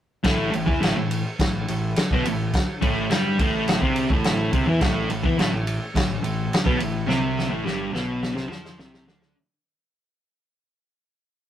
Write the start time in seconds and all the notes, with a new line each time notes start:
0.23 A1 A2 A3, kick, snare, ride
0.51 A1 A2, ride
0.66 E2 E3 E4, kick
0.81 A1 A2 A3, snare, ride
0.96 A1 A2
1.11 ride
1.39 A1 A2, kick, snare, ride
1.68 A1 A2, ride
1.96 snare, ride
2.11 B1 B2 B3, kick
2.25 A1 A2, ride
2.53 kick, snare, ride
2.81 A1 A2 A3, kick, ride
3.10 G2 G3 G4, snare, ride
3.39 A1 A2 A3, kick, ride
3.68 snare, ride
3.82 C2 C3 C4, kick
3.96 ride
4.10 A1 A2 A3, kick
4.24 snare, ride
4.52 C2 C3 C4, kick, ride
4.67 E2 E3 E4
4.81 A1 A2 A3, kick, snare, ride
5.10 A1 A2, ride
5.23 E2 E3 E4, kick
5.37 A1 A2 A3, snare, ride
5.52 A1 A2
5.67 ride
5.95 A1 A2, kick, snare, ride
6.22 A1 A2, ride
6.53 snare, ride
6.65 B1 B2 B3, kick
6.78 A1 A2, ride
7.07 C2 C3 C4, snare
7.39 snare
7.49 A1 A2 A3
7.64 G1 G2 G3, snare
7.92 B1 B2 B3, snare
8.23 snare
8.34 C2 C3 C4, snare
8.49 F2 F3 F4, snare
8.65 snare
8.78 C2 C3 C4, snare
8.94 snare
9.06 D2 D3 D4, snare
9.22 snare